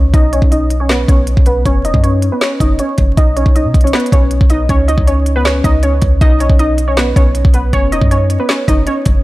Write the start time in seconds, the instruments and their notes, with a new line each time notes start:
Already playing: 808-style bass C#2, synth pluck C#4 C#5
0.14 808-style bass B1, synth pluck D#4 D#5, kick, closed hi-hat
0.33 synth pluck C#4 C#5, closed hi-hat
0.42 808-style bass B1, kick
0.52 synth pluck D#4 D#5, closed hi-hat
0.70 closed hi-hat
0.80 synth pluck C#4 C#5
0.89 synth pluck B3 B4, snare, clap, closed hi-hat
1.08 808-style bass B1, synth pluck C#4 C#5, kick, closed hi-hat
1.27 closed hi-hat
1.37 808-style bass B1, kick
1.46 synth pluck B3 B4, closed hi-hat
1.65 808-style bass F#1, synth pluck C#4 C#5, kick, closed hi-hat
1.85 808-style bass E1, synth pluck D#4 D#5, closed hi-hat
1.94 808-style bass F#2, kick
2.04 synth pluck C#4 C#5, closed hi-hat
2.22 closed hi-hat
2.32 synth pluck B3 B4
2.41 synth pluck C#4 C#5, snare, clap, closed hi-hat
2.60 808-style bass F#1, synth pluck D#4 D#5, kick, closed hi-hat
2.79 synth pluck C#4 C#5, closed hi-hat
2.98 808-style bass F#1, kick, closed hi-hat
3.17 808-style bass B1, synth pluck D#4 D#5, kick, closed hi-hat
3.37 synth pluck C#4 C#5, closed hi-hat
3.46 808-style bass B1, kick
3.55 synth pluck D#4 D#5, closed hi-hat
3.65 808-style bass B2
3.74 808-style bass B1, kick, closed hi-hat
3.81 synth pluck C#5, closed hi-hat
3.85 synth pluck C#4, closed hi-hat
3.93 synth pluck B3 B4, snare, clap, closed hi-hat
4.00 closed hi-hat
4.06 closed hi-hat
4.12 808-style bass B1, synth pluck C#4 C#5, kick, closed hi-hat
4.31 closed hi-hat
4.41 808-style bass B1, kick
4.50 synth pluck D#4 D#5, closed hi-hat
4.69 808-style bass C#2, synth pluck C#4 C#5, kick, closed hi-hat
4.88 synth pluck D#4 D#5, closed hi-hat
4.98 808-style bass C#2, kick
5.07 synth pluck C#4 C#5, closed hi-hat
5.26 closed hi-hat
5.36 synth pluck B3 B4
5.45 synth pluck C#4 C#5, snare, clap, closed hi-hat
5.64 808-style bass C#2, synth pluck D#4 D#5, kick, closed hi-hat
5.83 synth pluck C#4 C#5, closed hi-hat
6.02 808-style bass C#2, kick, closed hi-hat
6.21 808-style bass B1, synth pluck D#4 D#5, kick, closed hi-hat
6.40 synth pluck C#4 C#5, closed hi-hat
6.50 808-style bass B1, kick
6.59 synth pluck D#4 D#5, closed hi-hat
6.78 closed hi-hat
6.88 synth pluck C#4 C#5
6.97 synth pluck B3 B4, snare, clap, closed hi-hat
7.16 808-style bass B1, synth pluck C#4 C#5, kick, closed hi-hat
7.35 closed hi-hat
7.45 808-style bass B1, kick
7.54 synth pluck B3 B4, closed hi-hat
7.73 808-style bass F#1, synth pluck C#4 C#5, kick, closed hi-hat
7.92 808-style bass E1, synth pluck D#4 D#5, closed hi-hat
8.02 808-style bass F#2, kick
8.11 synth pluck C#4 C#5, closed hi-hat
8.30 closed hi-hat
8.40 synth pluck B3 B4
8.49 synth pluck C#4 C#5, snare, clap, closed hi-hat
8.68 808-style bass F#1, synth pluck D#4 D#5, kick, closed hi-hat
8.87 synth pluck C#4 C#5, closed hi-hat
9.05 808-style bass F#1, kick, closed hi-hat